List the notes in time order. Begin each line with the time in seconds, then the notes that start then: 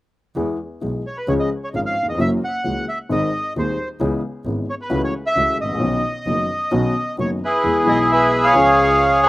0.35 E2 E3 G#3 B3 G#4
0.81 B1 B2 E3 G#3 B3 G#4
1.07 C#5
1.17 B4
1.27 C#2 C#3 F3 G#3 C#4 G#4 C#5
1.40 D#5
1.64 C#5
1.73 G#1 G#2 F3 G#3 C#4 G#4 F5
1.86 F5
2.03 D#2
2.08 E2 D#5
2.13 F2
2.18 F#1 F#2 E3 F#3 A#3 C#4 F#4 E5
2.45 F#5
2.64 C#2 C#3 E3 A#3 C#4 F#4
2.89 E5
3.09 G#1 G#2 D#3 G#3 C4 G#4 D#5
3.56 D#1 D#2 D#3 G#3 C4 G#4 C5
4.00 C#2 C#3 E3 B3 C#4 G#4
4.45 G#1 G#2 E3 B3 C#4 G#4
4.70 C#5
4.81 B4
4.90 C#2 C#3 E3 A3 C#4 F#4
5.04 C#5
5.26 E5
5.35 C#2 C#3 E3 A3 C#4 F#4
5.59 A1 D#5
5.63 G#1
5.69 A1
5.74 A#1
5.79 B1 B2 D#3 B3 C#4 F#4
6.26 F#1 F#2 D#3 B3 C#4 F#4
6.71 B1 B2 D#3 B3 C#4 F#4
7.17 F#1 F#2 D#3 B3 C#4 F#4 C#5
7.44 E4 G#4 B4
7.64 E2 E3 G#3 B3 G#4
7.84 B1 B2 E3 G#3 B3
7.89 G#4 D#5
8.12 G#4 B4 E5
8.44 G#4 C#5 F5
8.52 C#2 C#3 F3 G#3 C#4
8.57 G#4
9.23 F#5